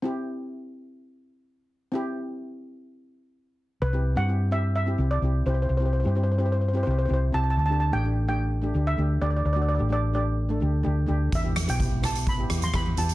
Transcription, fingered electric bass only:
\new Staff \with { instrumentName = "Fingered electric bass" } { \clef bass \time 4/4 \key c \lydian \tempo 4 = 128 r1 | r1 | c,8. g,4.~ g,16 c,8 c,8 c,8 | c,8. g,4.~ g,16 c,8 c,8 c,8 |
d,8. a,,4.~ a,,16 d,8 d,8 d,8 | d,8. a,,4.~ a,,16 d,8 d,8 d,8 | e,8. b,,4.~ b,,16 e,8 e,8 e,8 | }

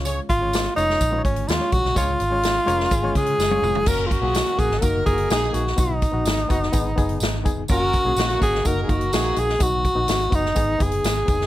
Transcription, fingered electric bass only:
\new Staff \with { instrumentName = "Fingered electric bass" } { \clef bass \time 4/4 \key fis \major \tempo 4 = 126 cis,8 gis,,4 eis,,8 ais,,8 gis,,8 dis,16 r16 ais,,16 b,,16 | cis,8 gis,,4 eis,,8 gis,,8 cis8 fis,,8 eis,,8 | fis,,8. b,,8 r16 ais,,16 gis,,16 fis,,8 fis,,8 ais,,8 ais,,8 | b,,8. ais,,16 gis,,8 fis,,8 gis,,8 fis,,8 gis,,8 eis,,8 |
fis,,8. b,,16 ais,,8 gis,,8 fis,,8 fis,,8 ais,,8 ais,,8 | b,,8. ais,,16 gis,,8 fis,,8 gis,,8 fis,,8 gis,,8 eis,,8 | }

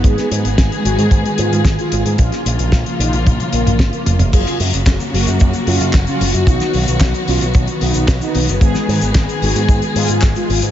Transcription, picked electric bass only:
\new Staff \with { instrumentName = "Picked electric bass" } { \clef bass \time 4/4 \key fis \major \tempo 4 = 112 gis,,16 r16 gis,16 gis,,16 gis,,16 r16 gis,,16 gis,16 gis,16 r16 gis,16 gis,16 gis,,16 r16 gis,,16 gis,16 | ais,,16 r16 ais,,16 ais,,16 ais,,16 r16 ais,,16 ais,,16 ais,,16 r16 ais,,16 ais,,16 gis,,16 r16 eis,,16 eis,,16 | fis,,16 r16 fis,16 fis,,16 fis,,16 r16 fis,,16 fis,16 fis,16 r16 fis,16 fis,16 fis,,16 r16 fis,,16 fis,16 | b,,16 r16 b,,16 b,,16 b,,16 r16 b,,16 b,,16 b,,16 r16 b,,16 b,,16 b,,16 r16 b,,16 fis,,16 |
gis,,16 r16 gis,16 gis,,16 gis,,16 r16 gis,,16 gis,16 gis,16 r16 gis,16 gis,16 gis,,16 r16 gis,,16 gis,16 | }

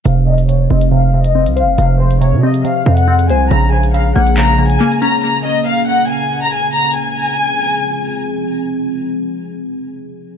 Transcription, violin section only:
\new Staff \with { instrumentName = "Violin section" } { \time 4/4 \key f \minor \tempo 4 = 139 f''8 ees''8 des''8 ees''8 f''8. ees''8. f''8 | f''8 c''8 des''8 ees''8 f''8. ges''8. aes''8 | bes''8 aes''8 f''8 ges''8 bes''8. aes''8. bes''8 | bes''8 ees''8 f''8 ges''8 aes''8. bes''16 aes''8 bes''8 |
aes''2. r4 | r1 | }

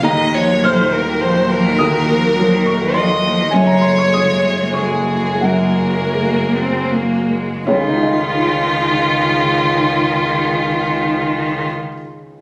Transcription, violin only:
\new Staff \with { instrumentName = "Violin" } { \time 3/4 \key des \major \tempo 4 = 86 ees''8 des''8 c''8 bes'8 c''8 bes'8~ | bes'2 ees''4 | des''2 aes'4 | bes'2~ bes'8 r8 |
f'2.~ | f'2. | }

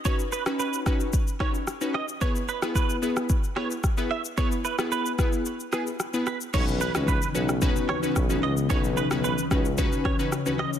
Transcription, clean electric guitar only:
\new Staff \with { instrumentName = "Clean electric guitar" } { \time 4/4 \key b \mixolydian \tempo 4 = 111 cis''16 r16 b'16 r16 b'8 r4 cis''16 r8. dis''16 r16 | cis''16 r16 b'16 r16 b'8 r4 cis''16 r8. e''16 r16 | cis''16 r16 b'16 r16 b'8 r4 gis'16 r8. b'16 r16 | cis''16 r16 b'16 r16 b'8 r4 cis''16 r8. dis''16 r16 |
cis''16 r16 b'16 r16 b'8 r4 cis''16 r8. dis''16 r16 | }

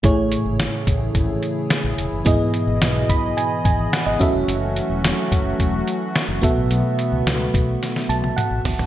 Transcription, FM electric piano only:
\new Staff \with { instrumentName = "FM electric piano" } { \time 4/4 \key a \lydian \tempo 4 = 108 << { a,4. r2 r8 | gis,4. b''8 gis''8 gis''8 fis''16 dis''16 e''8 | r2. r8 b,8~ | b,4 r4. a''8 fis''4 | } \\ { <a e' gis' cis''>1 | <b e' gis' dis''>2.~ <b e' gis' dis''>8 <cis' fis' a' e''>8~ | <cis' fis' a' e''>2.~ <cis' fis' a' e''>8 <b fis' a' e''>8~ | <b fis' a' e''>2.~ <b fis' a' e''>8 r8 | } >> }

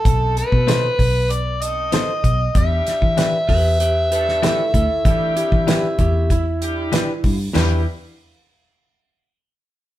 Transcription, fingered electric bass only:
\new Staff \with { instrumentName = "Fingered electric bass" } { \clef bass \time 4/4 \key e \minor \tempo 4 = 96 b,,8. b,8. b,,2 b,,8 | e,8 r16 e8. e,2 d,16 r16 | e8. e8. e,2 g,8 | e,8 r2. r8 | }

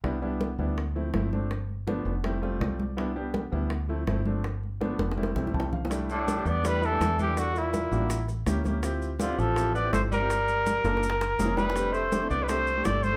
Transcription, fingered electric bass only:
\new Staff \with { instrumentName = "Fingered electric bass" } { \clef bass \time 4/4 \key c \major \tempo 4 = 164 c,4. d,4. g,,4~ | g,,4. f,,4. c,4~ | c,4. d,4. g,,4~ | g,,4. f,,4 b,,8 c,4~ |
c,4. e,4. e,4~ | e,4. a,,4. d,4~ | d,4. a,,4. g,,4~ | g,,4. fis,,4. f,,4~ |
f,,4. c,4. g,,4 | }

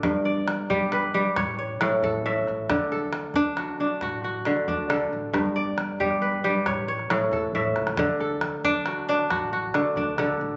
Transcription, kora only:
<<
  \new Staff \with { instrumentName = "Kora" } { \time 12/8 \key d \major \tempo 4. = 91 a'8 d''4 g'8 b'8 g'8 cis''8 cis''4 a'8 e''4~ | e''8 a'4 d'8 fis'8 d'8 fis'8 fis'4 d'8 a'4~ | a'8 d''4 g'8 b'8 g'8 cis''8 cis''4 a'8 e''4~ | e''8 a'4 d'8 fis'8 d'8 fis'8 fis'4 d'8 a'4 | }
  \new Staff \with { instrumentName = "Kora" } { \clef bass \time 12/8 \key d \major g,4 r8 g4 g8 r4 a,4 a,4 | d4 r8 d'4 d'4 r8 d4 d4 | g,4 r8 g4 g8 r4 a,4 a,4 | d4 r8 d'4 d'4 r8 d4 d4 | }
>>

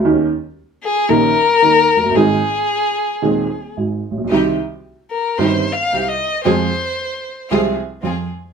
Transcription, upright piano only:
\new Staff \with { instrumentName = "Upright piano" } { \clef bass \time 4/4 \key aes \major \tempo 4 = 113 <ees, ees bes des' g'>8 r4. <bes,, bes, ees bes des' g'>8 r8 <ees, ees>8 r32 f,,32 ges,,32 g,,32 | <aes,, aes, ees aes c' aes'>8 r4. <ees,, ees, ees aes c' aes'>8 r8 <aes,, aes,>8 r32 a,,32 bes,,32 ces,32 | <c, c ees g c' g'>8 r4. <g,, g, ees g c' g'>8 r8 <c, c>8 r8 | <f, f aes c' aes'>8 r4. <c, c f aes c' aes'>8 r8 <f, f>8 r8 | }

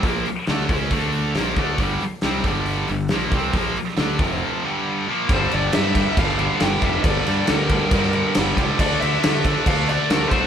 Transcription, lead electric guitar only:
\new Staff \with { instrumentName = "Lead electric guitar" } { \time 4/4 \key g \dorian \tempo 4 = 137 r1 | r1 | r1 | c''8 d''8 e''4 f''4 g''8 e''8 |
d''4 bes'2 r4 | d''8 e''4 r8 f''8 d''8 bes'8 c''8 | }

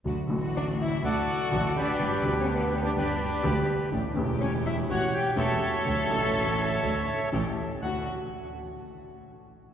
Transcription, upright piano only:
\new Staff \with { instrumentName = "Upright piano" } { \clef bass \time 4/4 \key d \major \tempo 4 = 124 <d, d fis a fis'>8 <a,, a, d fis a fis'>4. <d, d fis a fis'>8 r8 <a,, a, d fis a fis'>8 r8 | <g,, g, d g b g'>8 <d, d g b g'>4. <g,, g, d g b g'>8 r8 <d, d g b g'>8 r8 | <a,, a, e a cis' g'>8 <e,, e, e a cis' g'>4. <a,, a, e a cis' g'>8 r8 <e,, e, e a cis' g'>8 r8 | <d, d fis a d' a'>8 <a,, a, fis a d' a'>4. <d, d fis a d' a'>8 r8 <a,, a, e a cis' g'>8 r8 |
<d, a d' fis'>8 r2. r8 | }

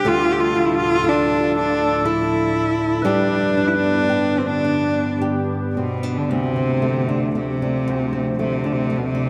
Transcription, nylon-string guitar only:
\new Staff \with { instrumentName = "Nylon-string guitar" } { \time 3/4 \key d \dorian \tempo 4 = 58 <d, a'>8 f'8 a'4 a'4 | <g g'>8 d'8 g'8 d'8 g'8 c'16 d'16 | d,16 c'16 a16 d'16 a16 d'16 d,16 c'16 a16 d'16 a16 d'16 | }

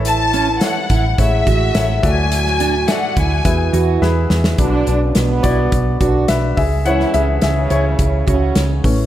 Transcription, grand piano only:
<<
  \new Staff \with { instrumentName = "Grand piano" } { \time 4/4 \key cis \phrygian \tempo 4 = 106 <e' a' cis'' e''>4 <e' a' cis'' fis''>4 <a e' cis'' fis''>4 <e' a' cis'' fis''>8 <fis' a' d'' e''>8~ | <fis' a' d'' e''>4 <fis' a' d'' e''>4 <e' gis' b' e''>4 <e' gis' b' e''>4 | r4. <fis' d''>4. <b' e''>8 <gis' e''>8 | <cis'' fis''>8 <gis' e''>8 <gis' e''>8 <e' cis''>4. r4 | }
  \new Staff \with { instrumentName = "Grand piano" } { \clef bass \time 4/4 \key cis \phrygian r2. r8 a,8~ | a,4 r4 b,4. r8 | <fis b d'>8 r2 <fis b d'>8 r4 | <e gis cis'>8 r2. <e a cis'>8 | }
>>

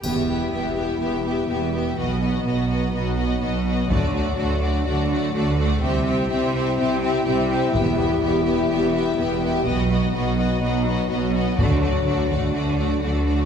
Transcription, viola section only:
\new Staff \with { instrumentName = "Viola section" } { \time 4/4 \key e \minor \tempo 4 = 124 b8 b8 b8 b8 b8 b8 b8 b8 | b8 b8 b8 b8 b8 b8 b8 b8 | a8 a8 a8 a8 a8 a8 a8 a8 | c'8 c'8 c'8 c'8 c'8 c'8 c'8 c'8 |
b8 b8 b8 b8 b8 b8 b8 b8 | b8 b8 b8 b8 b8 b8 b8 b8 | a8 a8 a8 a8 a8 a8 a8 a8 | }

